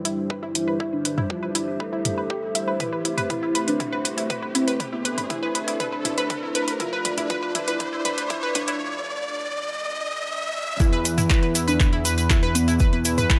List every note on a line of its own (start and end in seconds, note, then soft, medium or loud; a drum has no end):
0.00 2.76 G3 medium
0.00 2.76 D4 medium
0.00 4.76 E4 medium
0.00 8.80 G4 medium
0.00 0.18 A4 medium
0.00 6.76 C5 medium
0.00 8.80 C5 medium
0.00 0.26 D5 medium
0.00 6.80 E5 medium
0.00 riser medium
0.05 0.17 E4 medium
0.05 closed hi-hat loud
0.30 0.40 B4 medium
0.30 kick loud
0.43 0.54 E4 medium
0.55 0.80 E4 medium
0.55 closed hi-hat loud
0.68 0.77 B4 medium
0.80 0.92 E4 medium
0.80 kick loud
0.93 1.18 D4 loud
1.05 1.15 B4 medium
1.05 closed hi-hat loud
1.18 1.29 E4 medium
1.18 mid tom medium
1.30 1.47 F4 medium
1.30 kick loud
1.43 1.52 B4 medium
1.55 1.67 E4 medium
1.55 closed hi-hat loud
1.80 2.70 A4 loud
1.80 1.90 B4 medium
1.80 kick loud
1.93 2.04 E4 medium
2.05 closed hi-hat loud
2.05 mid tom medium
2.18 2.27 B4 medium
2.30 2.40 G4 medium
2.30 kick loud
2.55 2.61 E5 medium
2.55 closed hi-hat loud
2.68 2.77 B4 medium
2.80 10.76 A3 medium
2.80 6.80 A3 medium
2.80 6.76 C4 medium
2.80 3.13 E4 loud
2.80 2.90 B4 loud
2.80 kick loud
2.80 closed hi-hat medium
2.80 mid tom soft
2.93 3.02 B4 medium
3.05 3.17 E4 medium
3.05 closed hi-hat loud
3.18 3.27 B4 loud
3.18 closed hi-hat medium
3.18 mid tom medium
3.30 3.55 E4 medium
3.30 3.40 B4 medium
3.30 kick loud
3.30 closed hi-hat medium
3.30 mid tom medium
3.43 3.54 E4 medium
3.55 3.65 B4 loud
3.55 closed hi-hat loud
3.68 4.01 D4 loud
3.68 3.77 B4 medium
3.68 closed hi-hat medium
3.80 3.92 E4 medium
3.80 kick loud
3.80 closed hi-hat medium
3.80 mid tom medium
3.93 4.02 B4 loud
4.05 4.15 B4 medium
4.05 closed hi-hat loud
4.18 4.29 E4 medium
4.18 closed hi-hat medium
4.30 4.40 B4 loud
4.30 kick loud
4.30 closed hi-hat soft
4.30 mid tom medium
4.43 4.52 B4 medium
4.55 4.80 C4 medium
4.55 4.67 E4 medium
4.55 closed hi-hat loud
4.68 4.77 B4 loud
4.68 closed hi-hat medium
4.80 6.78 D4 medium
4.80 4.90 B4 medium
4.80 kick loud
4.80 closed hi-hat medium
4.80 mid tom medium
4.93 5.18 B3 loud
4.93 5.04 E4 medium
5.05 5.15 B4 medium
5.05 closed hi-hat loud
5.18 5.27 B4 medium
5.18 closed hi-hat medium
5.18 mid tom medium
5.30 5.42 E4 medium
5.30 5.47 E4 medium
5.30 kick loud
5.30 closed hi-hat medium
5.30 mid tom medium
5.43 5.52 B4 loud
5.55 5.65 B4 medium
5.55 closed hi-hat loud
5.68 5.79 E4 medium
5.68 closed hi-hat medium
5.80 6.70 D4 loud
5.80 5.90 B4 loud
5.80 kick loud
5.80 closed hi-hat medium
5.80 mid tom medium
5.93 6.02 B4 medium
6.05 6.17 E4 medium
6.05 closed hi-hat loud
6.05 mid tom loud
6.18 6.27 B4 loud
6.18 closed hi-hat medium
6.30 6.40 B4 medium
6.30 kick loud
6.30 closed hi-hat medium
6.30 mid tom medium
6.43 6.54 E4 medium
6.55 6.65 B4 loud
6.55 closed hi-hat loud
6.68 6.77 B4 medium
6.68 closed hi-hat medium
6.80 10.76 F3 medium
6.80 10.76 D4 medium
6.80 8.80 D4 medium
6.80 6.92 E4 medium
6.80 7.14 F4 loud
6.80 10.76 D5 medium
6.80 kick loud
6.80 closed hi-hat medium
6.80 mid tom medium
6.93 7.02 B4 loud
7.05 7.15 B4 medium
7.05 closed hi-hat loud
7.05 mid tom medium
7.18 7.30 E4 medium
7.18 closed hi-hat medium
7.18 mid tom medium
7.30 7.55 F4 loud
7.30 7.40 B4 loud
7.30 kick loud
7.30 closed hi-hat medium
7.30 mid tom medium
7.43 7.52 B4 medium
7.55 7.67 E4 medium
7.55 closed hi-hat loud
7.55 mid tom medium
7.68 8.01 E4 loud
7.68 7.77 B4 loud
7.68 closed hi-hat medium
7.80 7.90 B4 medium
7.80 kick loud
7.80 closed hi-hat medium
7.80 mid tom medium
7.93 8.05 E4 medium
8.05 8.15 B4 loud
8.05 closed hi-hat loud
8.05 mid tom medium
8.18 8.27 B4 medium
8.18 closed hi-hat medium
8.30 8.42 E4 medium
8.30 kick loud
8.30 closed hi-hat medium
8.30 mid tom medium
8.43 8.52 B4 loud
8.55 8.80 D4 loud
8.55 8.65 B4 medium
8.55 closed hi-hat loud
8.55 mid tom medium
8.68 8.80 E4 medium
8.68 closed hi-hat medium
10.80 13.39 E2 medium
10.80 11.13 E4 loud
10.80 10.92 E4 medium
10.80 kick loud
10.80 closed hi-hat soft
10.80 shaker soft
10.93 11.02 B4 loud
10.93 closed hi-hat soft
11.05 11.15 B4 medium
11.05 closed hi-hat loud
11.05 shaker medium
11.18 11.29 E4 medium
11.18 closed hi-hat soft
11.18 mid tom medium
11.18 shaker medium
11.30 11.55 E4 loud
11.30 11.40 B4 loud
11.30 kick loud
11.30 clap loud
11.30 closed hi-hat soft
11.30 shaker soft
11.43 11.52 B4 medium
11.43 closed hi-hat soft
11.55 11.67 E4 medium
11.55 closed hi-hat loud
11.55 shaker medium
11.68 12.01 D4 medium
11.68 11.77 B4 loud
11.68 closed hi-hat soft
11.68 shaker medium
11.80 11.90 B4 medium
11.80 kick loud
11.80 clap medium
11.80 closed hi-hat soft
11.80 shaker soft
11.93 12.04 E4 medium
11.93 closed hi-hat soft
12.05 12.15 B4 loud
12.05 closed hi-hat loud
12.05 shaker medium
12.18 12.27 B4 medium
12.18 closed hi-hat soft
12.18 shaker medium
12.30 12.42 E4 medium
12.30 kick loud
12.30 clap loud
12.30 closed hi-hat soft
12.30 shaker soft
12.43 12.52 B4 loud
12.43 closed hi-hat soft
12.55 12.80 B3 loud
12.55 12.65 B4 medium
12.55 closed hi-hat loud
12.55 shaker medium
12.68 12.79 E4 medium
12.68 closed hi-hat soft
12.68 shaker soft
12.79 12.90 B4 loud
12.79 kick loud
12.79 closed hi-hat soft
12.79 shaker soft
12.93 13.18 B3 medium
12.93 13.02 B4 medium
12.93 closed hi-hat soft
13.05 13.17 E4 medium
13.05 closed hi-hat loud
13.05 shaker loud
13.18 13.27 B4 loud
13.18 closed hi-hat soft
13.18 mid tom medium
13.18 shaker medium
13.30 13.39 E4 medium
13.30 13.39 B4 medium
13.30 kick loud
13.30 clap loud
13.30 closed hi-hat soft
13.30 shaker soft